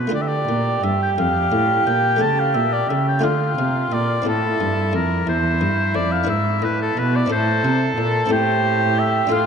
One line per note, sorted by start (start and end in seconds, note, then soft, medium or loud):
0.00 0.12 B2 soft
0.00 0.13 B4 soft
0.07 0.44 A3 soft
0.07 2.15 F4 soft
0.07 2.16 A4 soft
0.11 0.44 D3 soft
0.11 0.46 D3 soft
0.11 3.26 G4 medium
0.11 0.23 D5 medium
0.22 0.29 E5 soft
0.28 0.85 D5 medium
0.48 0.82 A#2 medium
0.48 0.80 A#2 soft
0.83 1.17 G2 soft
0.83 1.15 G2 soft
0.83 1.01 E5 medium
1.02 1.10 G5 medium
1.18 1.52 F2 medium
1.18 1.50 F2 soft
1.18 1.86 F5 medium
1.52 1.83 A2 soft
1.52 1.87 A2 soft
1.87 2.18 A#2 soft
1.87 2.23 A#2 soft
1.87 2.23 G5 medium
2.16 3.18 A3 soft
2.16 3.19 G4 soft
2.16 3.20 A4 soft
2.21 2.52 C#3 soft
2.21 2.57 C#3 soft
2.21 2.41 A5 medium
2.40 2.56 F5 medium
2.55 2.86 A#2 soft
2.55 2.89 A#2 soft
2.55 2.74 E5 medium
2.72 2.90 D5 medium
2.89 3.25 C#3 medium
2.89 3.21 C#3 soft
2.89 3.07 E5 medium
3.08 3.25 G5 medium
3.19 3.55 A3 soft
3.19 4.22 F4 soft
3.19 4.23 A4 soft
3.23 3.54 D3 soft
3.23 3.57 D3 medium
3.23 4.26 F4 soft
3.23 3.95 F5 medium
3.58 3.91 C3 soft
3.58 3.89 C3 soft
3.91 4.26 A#2 soft
3.91 4.23 A#2 soft
3.91 4.27 D5 medium
4.22 6.23 C4 soft
4.22 6.23 E4 soft
4.22 6.24 A4 soft
4.27 4.60 A2 medium
4.27 4.57 A2 soft
4.27 5.26 E4 medium
4.27 4.94 A4 medium
4.60 4.91 G2 soft
4.60 4.96 G2 soft
4.93 5.24 F2 soft
4.93 5.27 F2 medium
4.93 5.28 A#4 medium
5.27 5.58 E2 soft
5.27 5.63 E2 medium
5.27 7.27 E4 medium
5.27 5.97 C5 medium
5.61 5.92 G2 soft
5.61 5.97 G2 medium
5.95 6.25 F2 soft
5.95 6.28 F2 medium
5.95 6.13 D5 medium
6.12 6.29 F5 medium
6.24 7.25 D4 soft
6.24 7.25 E4 soft
6.24 7.26 B4 soft
6.28 6.59 G#2 soft
6.28 6.64 G#2 medium
6.28 6.66 E5 medium
6.62 6.96 A2 medium
6.62 6.93 A2 medium
6.62 6.81 B4 medium
6.82 7.00 A4 medium
6.96 7.29 B2 medium
6.96 7.27 B2 soft
6.96 7.17 B4 medium
7.16 7.31 D5 medium
7.26 7.65 A2 medium
7.26 8.25 C4 soft
7.26 8.26 E4 soft
7.26 8.27 A4 soft
7.31 7.61 A2 soft
7.31 8.32 A4 medium
7.31 7.81 C5 medium
7.64 7.96 C3 medium
7.64 7.94 C3 soft
7.96 8.30 A#2 medium
7.96 8.28 A#2 soft
7.96 8.31 A4 medium
8.26 9.26 C4 soft
8.26 9.27 E4 soft
8.26 9.28 A4 soft
8.30 9.28 A2 medium
8.30 9.31 G4 medium
8.30 9.00 C5 medium
8.99 9.34 E5 medium
9.27 9.46 A2 medium
9.27 9.46 D4 soft
9.27 9.46 F4 soft
9.27 9.46 A4 soft
9.32 9.46 A2 soft
9.32 9.46 F4 medium
9.32 9.46 F5 medium